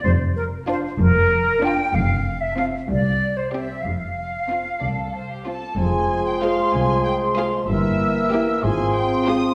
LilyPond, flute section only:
\new Staff \with { instrumentName = "Flute section" } { \time 6/8 \key f \major \tempo 4. = 63 c''8 bes'8 c''8 bes'4 g''8 | f''8. e''16 f''8 d''8. c''16 e''8 | f''2~ f''8 r8 | \key f \minor c'''2. |
e'''4. c'''4. | }